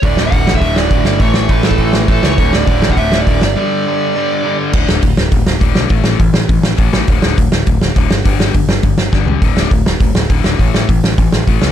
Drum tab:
CC |----------------|----------------|----------------|----------------|
HH |o---o---o---o---|o---o---o---o---|o---o---o---o---|----------------|
SD |--o---o---o---o-|--o---o---o---o-|--o---o---o---o-|----------------|
FT |----------------|----------------|----------------|----------------|
BD |o---o--oo---o---|o---o--oo---o---|o---o--oo---o---|----------------|

CC |x---------------|----------------|----------------|----------------|
HH |----o---o---o---|o---o---o---o---|o---o---o---o---|o---o---o-------|
SD |--o---o---o---o-|--o---o---o---o-|--o---o---o---o-|--o---o---o-o---|
FT |----------------|----------------|----------------|--------------o-|
BD |o---o---o---o---|o---o---o---o---|o---o---o---o---|o---o---o---o---|

CC |----------------|----------------|
HH |o---o---o---o---|o---o---o---o---|
SD |--o---o---o---o-|--o---o---o---o-|
FT |----------------|----------------|
BD |o---o---o---o---|o---o---o---o---|